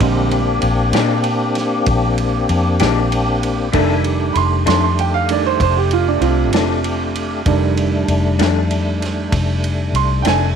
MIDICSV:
0, 0, Header, 1, 6, 480
1, 0, Start_track
1, 0, Tempo, 621118
1, 9, Time_signature, 12, 3, 24, 8
1, 8158, End_track
2, 0, Start_track
2, 0, Title_t, "Tonewheel organ"
2, 0, Program_c, 0, 16
2, 0, Note_on_c, 0, 58, 61
2, 0, Note_on_c, 0, 60, 63
2, 0, Note_on_c, 0, 62, 62
2, 0, Note_on_c, 0, 67, 75
2, 2853, Note_off_c, 0, 58, 0
2, 2855, Note_off_c, 0, 60, 0
2, 2855, Note_off_c, 0, 62, 0
2, 2855, Note_off_c, 0, 67, 0
2, 2876, Note_on_c, 0, 76, 67
2, 2880, Note_on_c, 0, 62, 69
2, 2881, Note_on_c, 0, 57, 67
2, 2883, Note_on_c, 0, 80, 60
2, 3111, Note_off_c, 0, 62, 0
2, 3114, Note_off_c, 0, 57, 0
2, 3120, Note_on_c, 0, 62, 69
2, 3122, Note_off_c, 0, 76, 0
2, 3123, Note_on_c, 0, 57, 77
2, 3125, Note_on_c, 0, 67, 67
2, 3126, Note_off_c, 0, 80, 0
2, 5737, Note_off_c, 0, 62, 0
2, 5738, Note_off_c, 0, 57, 0
2, 5739, Note_off_c, 0, 67, 0
2, 5758, Note_on_c, 0, 55, 65
2, 5759, Note_on_c, 0, 62, 65
2, 5762, Note_on_c, 0, 57, 65
2, 8158, Note_off_c, 0, 55, 0
2, 8158, Note_off_c, 0, 57, 0
2, 8158, Note_off_c, 0, 62, 0
2, 8158, End_track
3, 0, Start_track
3, 0, Title_t, "Upright piano"
3, 0, Program_c, 1, 0
3, 0, Note_on_c, 1, 50, 48
3, 0, Note_on_c, 1, 55, 42
3, 0, Note_on_c, 1, 56, 45
3, 0, Note_on_c, 1, 60, 57
3, 0, Note_on_c, 1, 65, 78
3, 317, Note_off_c, 1, 50, 0
3, 321, Note_off_c, 1, 56, 0
3, 321, Note_off_c, 1, 60, 0
3, 322, Note_off_c, 1, 55, 0
3, 459, Note_off_c, 1, 65, 0
3, 2882, Note_on_c, 1, 51, 51
3, 2884, Note_on_c, 1, 55, 44
3, 2890, Note_on_c, 1, 57, 44
3, 2895, Note_on_c, 1, 62, 51
3, 3346, Note_on_c, 1, 83, 61
3, 3373, Note_off_c, 1, 83, 0
3, 3377, Note_on_c, 1, 84, 84
3, 3602, Note_off_c, 1, 84, 0
3, 3613, Note_on_c, 1, 84, 88
3, 3723, Note_off_c, 1, 84, 0
3, 3738, Note_on_c, 1, 84, 69
3, 3845, Note_off_c, 1, 84, 0
3, 3862, Note_on_c, 1, 79, 73
3, 3967, Note_off_c, 1, 79, 0
3, 3973, Note_on_c, 1, 77, 87
3, 4083, Note_off_c, 1, 77, 0
3, 4085, Note_off_c, 1, 55, 0
3, 4086, Note_off_c, 1, 57, 0
3, 4087, Note_off_c, 1, 51, 0
3, 4089, Note_off_c, 1, 62, 0
3, 4097, Note_on_c, 1, 55, 35
3, 4097, Note_on_c, 1, 57, 32
3, 4099, Note_on_c, 1, 51, 38
3, 4101, Note_on_c, 1, 62, 44
3, 4107, Note_on_c, 1, 74, 77
3, 4210, Note_off_c, 1, 74, 0
3, 4223, Note_on_c, 1, 72, 82
3, 4309, Note_off_c, 1, 55, 0
3, 4309, Note_off_c, 1, 57, 0
3, 4310, Note_off_c, 1, 51, 0
3, 4311, Note_off_c, 1, 62, 0
3, 4328, Note_off_c, 1, 72, 0
3, 4345, Note_on_c, 1, 72, 84
3, 4449, Note_off_c, 1, 72, 0
3, 4458, Note_on_c, 1, 67, 69
3, 4565, Note_off_c, 1, 67, 0
3, 4584, Note_on_c, 1, 65, 91
3, 4688, Note_off_c, 1, 65, 0
3, 4700, Note_on_c, 1, 62, 75
3, 4800, Note_on_c, 1, 60, 73
3, 4804, Note_on_c, 1, 65, 88
3, 4806, Note_off_c, 1, 62, 0
3, 5772, Note_on_c, 1, 55, 43
3, 5774, Note_on_c, 1, 51, 49
3, 5778, Note_on_c, 1, 62, 55
3, 5779, Note_on_c, 1, 57, 45
3, 6212, Note_off_c, 1, 60, 0
3, 6214, Note_off_c, 1, 65, 0
3, 7695, Note_on_c, 1, 84, 74
3, 7901, Note_on_c, 1, 79, 62
3, 7923, Note_off_c, 1, 84, 0
3, 7929, Note_off_c, 1, 79, 0
3, 7937, Note_on_c, 1, 80, 87
3, 8158, Note_off_c, 1, 51, 0
3, 8158, Note_off_c, 1, 55, 0
3, 8158, Note_off_c, 1, 57, 0
3, 8158, Note_off_c, 1, 62, 0
3, 8158, Note_off_c, 1, 80, 0
3, 8158, End_track
4, 0, Start_track
4, 0, Title_t, "Clean electric guitar"
4, 0, Program_c, 2, 27
4, 730, Note_on_c, 2, 67, 75
4, 737, Note_on_c, 2, 56, 66
4, 738, Note_on_c, 2, 62, 75
4, 742, Note_on_c, 2, 46, 63
4, 873, Note_off_c, 2, 67, 0
4, 877, Note_off_c, 2, 56, 0
4, 878, Note_off_c, 2, 62, 0
4, 880, Note_off_c, 2, 46, 0
4, 2167, Note_on_c, 2, 67, 86
4, 2170, Note_on_c, 2, 62, 77
4, 2176, Note_on_c, 2, 56, 68
4, 2180, Note_on_c, 2, 46, 61
4, 2312, Note_off_c, 2, 67, 0
4, 2314, Note_off_c, 2, 62, 0
4, 2316, Note_off_c, 2, 56, 0
4, 2318, Note_off_c, 2, 46, 0
4, 2880, Note_on_c, 2, 41, 91
4, 2889, Note_on_c, 2, 51, 81
4, 2893, Note_on_c, 2, 57, 94
4, 2897, Note_on_c, 2, 62, 99
4, 3028, Note_off_c, 2, 41, 0
4, 3033, Note_off_c, 2, 51, 0
4, 3035, Note_off_c, 2, 57, 0
4, 3037, Note_off_c, 2, 62, 0
4, 3602, Note_on_c, 2, 62, 74
4, 3604, Note_on_c, 2, 57, 68
4, 3613, Note_on_c, 2, 51, 60
4, 3617, Note_on_c, 2, 41, 60
4, 3749, Note_off_c, 2, 62, 0
4, 3750, Note_off_c, 2, 57, 0
4, 3755, Note_off_c, 2, 51, 0
4, 3757, Note_off_c, 2, 41, 0
4, 5054, Note_on_c, 2, 62, 66
4, 5065, Note_on_c, 2, 57, 67
4, 5069, Note_on_c, 2, 51, 72
4, 5071, Note_on_c, 2, 41, 63
4, 5195, Note_off_c, 2, 62, 0
4, 5200, Note_off_c, 2, 57, 0
4, 5202, Note_off_c, 2, 51, 0
4, 5203, Note_off_c, 2, 41, 0
4, 6484, Note_on_c, 2, 62, 78
4, 6490, Note_on_c, 2, 57, 65
4, 6499, Note_on_c, 2, 51, 75
4, 6502, Note_on_c, 2, 41, 60
4, 6630, Note_off_c, 2, 62, 0
4, 6632, Note_off_c, 2, 57, 0
4, 6637, Note_off_c, 2, 51, 0
4, 6638, Note_off_c, 2, 41, 0
4, 7921, Note_on_c, 2, 62, 67
4, 7934, Note_on_c, 2, 57, 71
4, 7939, Note_on_c, 2, 51, 63
4, 7944, Note_on_c, 2, 41, 58
4, 8068, Note_off_c, 2, 62, 0
4, 8074, Note_off_c, 2, 57, 0
4, 8076, Note_off_c, 2, 51, 0
4, 8079, Note_off_c, 2, 41, 0
4, 8158, End_track
5, 0, Start_track
5, 0, Title_t, "Fingered electric bass"
5, 0, Program_c, 3, 33
5, 4, Note_on_c, 3, 34, 93
5, 456, Note_off_c, 3, 34, 0
5, 485, Note_on_c, 3, 34, 89
5, 707, Note_off_c, 3, 34, 0
5, 721, Note_on_c, 3, 46, 94
5, 1414, Note_off_c, 3, 46, 0
5, 1442, Note_on_c, 3, 34, 99
5, 1894, Note_off_c, 3, 34, 0
5, 1927, Note_on_c, 3, 41, 105
5, 2168, Note_on_c, 3, 34, 106
5, 2180, Note_off_c, 3, 41, 0
5, 2857, Note_off_c, 3, 34, 0
5, 2887, Note_on_c, 3, 29, 79
5, 3337, Note_off_c, 3, 29, 0
5, 3366, Note_on_c, 3, 29, 82
5, 3588, Note_off_c, 3, 29, 0
5, 3611, Note_on_c, 3, 41, 100
5, 4299, Note_off_c, 3, 41, 0
5, 4331, Note_on_c, 3, 29, 93
5, 4778, Note_off_c, 3, 29, 0
5, 4800, Note_on_c, 3, 36, 105
5, 5036, Note_off_c, 3, 36, 0
5, 5036, Note_on_c, 3, 29, 100
5, 5731, Note_off_c, 3, 29, 0
5, 5766, Note_on_c, 3, 29, 85
5, 6216, Note_off_c, 3, 29, 0
5, 6245, Note_on_c, 3, 29, 82
5, 6467, Note_off_c, 3, 29, 0
5, 6486, Note_on_c, 3, 41, 93
5, 7175, Note_off_c, 3, 41, 0
5, 7205, Note_on_c, 3, 29, 85
5, 7655, Note_off_c, 3, 29, 0
5, 7675, Note_on_c, 3, 36, 101
5, 7920, Note_on_c, 3, 29, 110
5, 7931, Note_off_c, 3, 36, 0
5, 8158, Note_off_c, 3, 29, 0
5, 8158, End_track
6, 0, Start_track
6, 0, Title_t, "Drums"
6, 2, Note_on_c, 9, 51, 84
6, 3, Note_on_c, 9, 36, 104
6, 79, Note_off_c, 9, 51, 0
6, 81, Note_off_c, 9, 36, 0
6, 242, Note_on_c, 9, 51, 59
6, 319, Note_off_c, 9, 51, 0
6, 476, Note_on_c, 9, 51, 64
6, 553, Note_off_c, 9, 51, 0
6, 718, Note_on_c, 9, 51, 76
6, 733, Note_on_c, 9, 38, 92
6, 795, Note_off_c, 9, 51, 0
6, 810, Note_off_c, 9, 38, 0
6, 954, Note_on_c, 9, 51, 62
6, 1032, Note_off_c, 9, 51, 0
6, 1199, Note_on_c, 9, 51, 55
6, 1214, Note_on_c, 9, 38, 32
6, 1276, Note_off_c, 9, 51, 0
6, 1291, Note_off_c, 9, 38, 0
6, 1439, Note_on_c, 9, 51, 78
6, 1444, Note_on_c, 9, 36, 109
6, 1517, Note_off_c, 9, 51, 0
6, 1521, Note_off_c, 9, 36, 0
6, 1682, Note_on_c, 9, 51, 61
6, 1759, Note_off_c, 9, 51, 0
6, 1925, Note_on_c, 9, 51, 62
6, 2002, Note_off_c, 9, 51, 0
6, 2160, Note_on_c, 9, 51, 81
6, 2176, Note_on_c, 9, 38, 101
6, 2237, Note_off_c, 9, 51, 0
6, 2253, Note_off_c, 9, 38, 0
6, 2411, Note_on_c, 9, 51, 66
6, 2488, Note_off_c, 9, 51, 0
6, 2651, Note_on_c, 9, 51, 63
6, 2728, Note_off_c, 9, 51, 0
6, 2884, Note_on_c, 9, 51, 83
6, 2888, Note_on_c, 9, 36, 106
6, 2961, Note_off_c, 9, 51, 0
6, 2965, Note_off_c, 9, 36, 0
6, 3124, Note_on_c, 9, 51, 61
6, 3201, Note_off_c, 9, 51, 0
6, 3365, Note_on_c, 9, 51, 68
6, 3442, Note_off_c, 9, 51, 0
6, 3605, Note_on_c, 9, 51, 89
6, 3621, Note_on_c, 9, 38, 103
6, 3683, Note_off_c, 9, 51, 0
6, 3698, Note_off_c, 9, 38, 0
6, 3853, Note_on_c, 9, 51, 62
6, 3931, Note_off_c, 9, 51, 0
6, 4086, Note_on_c, 9, 51, 74
6, 4163, Note_off_c, 9, 51, 0
6, 4328, Note_on_c, 9, 36, 124
6, 4329, Note_on_c, 9, 51, 87
6, 4405, Note_off_c, 9, 36, 0
6, 4406, Note_off_c, 9, 51, 0
6, 4565, Note_on_c, 9, 51, 62
6, 4642, Note_off_c, 9, 51, 0
6, 4803, Note_on_c, 9, 51, 67
6, 4881, Note_off_c, 9, 51, 0
6, 5043, Note_on_c, 9, 51, 84
6, 5059, Note_on_c, 9, 38, 105
6, 5121, Note_off_c, 9, 51, 0
6, 5136, Note_off_c, 9, 38, 0
6, 5287, Note_on_c, 9, 51, 62
6, 5365, Note_off_c, 9, 51, 0
6, 5529, Note_on_c, 9, 51, 61
6, 5606, Note_off_c, 9, 51, 0
6, 5763, Note_on_c, 9, 51, 78
6, 5766, Note_on_c, 9, 36, 100
6, 5840, Note_off_c, 9, 51, 0
6, 5843, Note_off_c, 9, 36, 0
6, 6007, Note_on_c, 9, 51, 59
6, 6084, Note_off_c, 9, 51, 0
6, 6246, Note_on_c, 9, 51, 63
6, 6323, Note_off_c, 9, 51, 0
6, 6486, Note_on_c, 9, 51, 68
6, 6501, Note_on_c, 9, 38, 108
6, 6563, Note_off_c, 9, 51, 0
6, 6578, Note_off_c, 9, 38, 0
6, 6728, Note_on_c, 9, 51, 65
6, 6805, Note_off_c, 9, 51, 0
6, 6972, Note_on_c, 9, 51, 62
6, 6987, Note_on_c, 9, 38, 31
6, 7049, Note_off_c, 9, 51, 0
6, 7065, Note_off_c, 9, 38, 0
6, 7205, Note_on_c, 9, 36, 113
6, 7205, Note_on_c, 9, 51, 89
6, 7220, Note_on_c, 9, 38, 35
6, 7282, Note_off_c, 9, 51, 0
6, 7283, Note_off_c, 9, 36, 0
6, 7297, Note_off_c, 9, 38, 0
6, 7448, Note_on_c, 9, 51, 64
6, 7525, Note_off_c, 9, 51, 0
6, 7687, Note_on_c, 9, 51, 67
6, 7764, Note_off_c, 9, 51, 0
6, 7919, Note_on_c, 9, 51, 87
6, 7934, Note_on_c, 9, 38, 103
6, 7996, Note_off_c, 9, 51, 0
6, 8012, Note_off_c, 9, 38, 0
6, 8158, End_track
0, 0, End_of_file